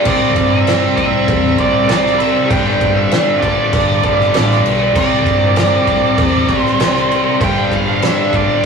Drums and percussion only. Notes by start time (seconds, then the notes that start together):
0.05 kick, crash
0.36 kick, crash
0.67 snare, crash
0.97 kick, crash
1.28 kick, crash
1.58 kick, crash
1.89 snare, crash
2.06 snare
2.20 crash
2.51 kick, crash
2.81 kick, crash
3.11 snare, crash
3.43 kick, crash
3.73 kick, crash
4.03 kick, crash
4.21 snare
4.34 snare, crash
4.51 snare
4.66 crash
4.96 kick, crash
5.26 kick, crash
5.56 snare, crash
5.87 kick, crash
6.18 kick, crash
6.49 kick, crash
6.66 snare
6.80 snare, crash
6.96 snare
7.11 crash
7.41 kick, crash
7.72 kick, crash
8.02 snare, crash
8.33 kick, crash